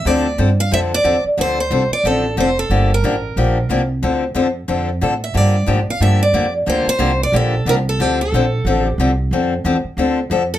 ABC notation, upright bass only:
X:1
M:4/4
L:1/8
Q:"Swing" 1/4=181
K:Dm
V:1 name="Upright bass" clef=bass
D,,2 G,,2 F,,2 E,, z | D,,2 C,, z A,,,2 F,,,2 | G,,,2 A,,,2 B,,,2 C,,2 | D,,2 F,,2 F,,2 A,,2 |
G,,2 ^G,, z =G,,2 F,,2 | D,, z C,,2 B,,,2 C,,2 | D,,2 B,,,2 A,,,2 C,,2 | F,,2 E,, z D,,2 F,,2 |]